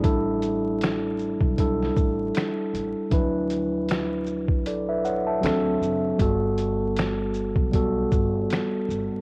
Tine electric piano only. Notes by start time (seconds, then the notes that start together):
0.02 G3 D4 E4 A4
1.57 G3 D4 E4 A4
3.10 F3 D4 E4 B4
3.17 F#3
4.67 A4 D5
4.89 B4 E5
5.05 C#5 F#5
5.27 E5 A5
5.41 F#3 C4 D4 A4
6.18 G3 B3 F#4 A4
7.72 G3 B3 F#4 A4